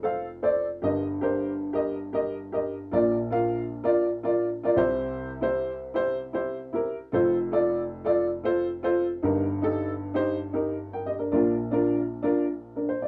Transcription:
0.00 0.80 F1 medium
0.00 0.80 F2 medium
0.00 0.25 A4 medium
0.00 0.25 C5 medium
0.05 0.26 F5 medium
0.43 0.64 A4 medium
0.43 0.64 C5 medium
0.43 0.65 D5 medium
0.82 2.89 G1 medium
0.82 2.89 G2 medium
0.82 1.04 G4 medium
0.82 1.04 A#4 medium
0.82 1.05 D#5 medium
1.21 1.50 G4 medium
1.21 1.51 A#4 medium
1.21 1.51 C5 medium
1.73 1.95 G4 medium
1.73 1.95 A#4 medium
1.73 1.96 D#5 medium
2.13 2.35 G4 medium
2.13 2.35 A#4 medium
2.13 2.36 D#5 medium
2.52 2.74 G4 medium
2.52 2.75 A#4 medium
2.52 2.75 D#5 medium
2.91 4.73 A#1 medium
2.91 4.73 A#2 medium
2.91 3.13 F4 medium
2.91 3.14 A#4 medium
2.91 3.14 D5 medium
3.31 3.60 F4 medium
3.31 3.60 A#4 medium
3.31 3.61 F5 medium
3.84 4.05 F4 medium
3.84 4.06 A#4 medium
3.84 4.06 D5 medium
4.23 4.45 F4 medium
4.23 4.45 A#4 medium
4.23 4.46 D5 medium
4.63 4.77 F4 medium
4.63 4.77 A#4 medium
4.63 4.78 D5 medium
4.76 6.83 C2 medium
4.76 6.83 C3 medium
4.76 5.29 E4 medium
4.76 5.29 G4 medium
4.76 5.30 C5 loud
5.41 5.70 E4 medium
5.41 5.70 G4 medium
5.41 5.71 C5 medium
5.94 6.16 E4 medium
5.94 6.16 G4 medium
5.94 6.17 C5 loud
6.33 6.55 E4 medium
6.33 6.55 G4 medium
6.33 6.56 C5 medium
6.73 6.94 E4 medium
6.73 6.95 G4 medium
6.73 6.95 A#4 medium
7.12 9.19 F1 medium
7.12 9.19 F2 medium
7.12 7.34 F4 medium
7.12 7.34 A4 medium
7.12 7.35 C5 medium
7.52 7.80 F4 medium
7.52 7.80 A4 medium
7.52 7.81 D5 medium
8.05 8.26 F4 medium
8.05 8.26 A4 medium
8.05 8.27 D5 medium
8.44 8.65 F4 medium
8.44 8.65 A4 medium
8.44 8.66 C5 medium
8.83 9.04 F4 medium
8.83 9.05 A4 medium
8.83 9.05 C5 medium
9.23 11.29 G1 medium
9.23 11.28 G2 medium
9.23 9.44 D#4 medium
9.23 9.44 G4 medium
9.23 9.45 A#4 medium
9.62 9.90 D#4 medium
9.62 9.91 G4 medium
9.62 9.91 A4 medium
10.14 10.35 D#4 medium
10.14 10.36 G4 medium
10.14 10.36 C5 medium
10.53 10.75 D#4 medium
10.53 10.75 G4 medium
10.53 10.75 A#4 medium
10.93 11.06 A#4 medium
10.93 11.06 G5 medium
11.06 11.19 G4 medium
11.06 11.19 D#5 medium
11.19 11.30 D4 soft
11.19 11.32 A#4 medium
11.32 13.08 A#1 medium
11.32 13.08 A#2 medium
11.32 11.53 D4 medium
11.32 11.54 F4 medium
11.32 11.54 A#4 medium
11.71 11.99 D4 medium
11.71 12.00 F4 medium
11.71 12.00 A#4 medium
12.23 12.44 D4 medium
12.23 12.45 F4 medium
12.23 12.45 A#4 medium
12.76 12.89 D4 medium
12.76 12.88 A#4 medium
12.89 13.01 C5 medium
13.02 13.08 F4 medium
13.02 13.08 D5 medium

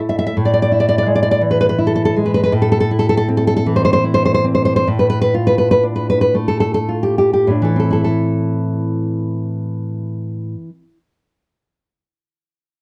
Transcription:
0.00 0.31 A2 medium
0.00 0.36 A3 medium
0.00 0.35 E4 medium
0.00 0.35 A4 soft
0.09 0.17 E5 medium
0.19 0.25 E5 loud
0.27 0.35 E5 loud
0.37 2.48 A2 medium
0.45 0.52 D5 medium
0.54 0.61 D5 loud
0.62 0.71 D5 loud
0.72 1.77 E4 medium
0.80 0.87 D5 loud
0.89 0.97 D5 loud
0.98 1.07 D5 loud
1.06 1.41 G#3 medium
1.15 1.21 D5 loud
1.23 1.30 D5 loud
1.31 1.41 D5 loud
1.41 2.51 E3 medium
1.51 1.59 B4 loud
1.61 1.68 B4 loud
1.69 1.78 B4 loud
1.78 2.25 E4 medium
1.87 1.94 A4 medium
1.96 2.04 A4 medium
2.05 2.14 A4 loud
2.16 2.52 G#3 medium
2.26 2.33 B4 medium
2.34 2.42 B4 loud
2.44 2.52 B4 loud
2.52 4.84 A2 medium
2.62 2.70 A4 loud
2.72 2.79 A4 loud
2.80 2.89 A4 loud
2.91 4.03 E4 medium
2.99 3.08 A4 loud
3.09 3.16 A4 loud
3.17 3.27 A4 loud
3.28 4.43 C4 medium
3.37 3.46 A4 loud
3.47 3.55 A4 loud
3.57 3.65 A4 loud
3.66 4.88 E3 medium
3.76 3.84 C5 loud
3.85 3.92 C5 loud
3.93 4.03 C5 loud
4.04 4.88 E4 medium
4.14 4.24 C5 loud
4.25 4.33 C5 loud
4.34 4.44 C5 loud
4.44 4.87 C4 medium
4.55 4.64 C5 medium
4.65 4.75 C5 loud
4.76 4.87 C5 loud
4.87 7.46 A2 medium
4.99 5.08 B4 medium
5.10 5.20 B4 loud
5.21 5.33 B4 loud
5.34 6.87 F4 medium
5.47 5.57 B4 medium
5.58 5.70 B4 medium
5.71 5.83 B4 loud
5.83 7.49 D4 medium
5.96 6.08 B4 medium
6.10 6.20 B4 loud
6.21 6.34 B4 medium
6.34 8.07 A3 medium
6.48 6.59 A4 medium
6.60 6.73 A4 medium
6.74 6.89 A4 medium
6.89 7.90 F4 medium
7.03 7.17 G4 medium
7.18 7.32 G4 medium
7.33 7.50 G4 medium
7.47 10.54 A2 medium
7.47 7.75 D4 soft
7.62 10.69 E3 medium
7.62 7.78 A4 medium
7.76 10.83 C4 medium
7.76 7.91 A4 medium
7.90 10.98 E4 medium
7.90 8.03 A4 medium
8.04 11.11 A4 medium

